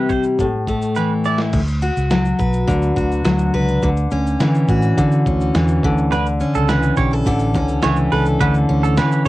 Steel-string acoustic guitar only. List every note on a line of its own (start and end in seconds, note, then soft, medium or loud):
0.00 0.45 C3 medium
0.00 0.46 G3 medium
0.00 0.45 E4 medium
0.40 1.60 A2 medium
0.68 1.60 A3 medium
0.97 1.60 E3 medium
1.26 1.60 E4 soft
1.82 2.96 F#4 medium
2.10 3.24 F#3 medium
2.39 3.53 B4 medium
2.67 3.82 D3 medium
2.96 3.88 F#4 medium
3.24 3.88 F#3 medium
3.54 3.89 B4 medium
3.83 4.97 D3 medium
4.12 5.26 C#4 medium
4.40 5.54 E3 medium
4.69 5.89 F#4 medium
4.98 5.83 D3 medium
5.27 6.15 C#4 medium
5.55 6.15 E3 medium
5.84 6.11 D3 medium
6.12 7.25 D3 medium
6.41 7.55 C#4 medium
6.70 7.83 E3 medium
6.98 7.13 G4 medium
7.13 8.11 A4 medium
7.27 8.39 D3 medium
7.55 8.68 C#4 medium
7.84 8.96 E3 medium
8.12 9.26 A4 medium
8.41 9.28 D3 medium
8.69 9.28 C#4 medium
8.97 9.28 E3 medium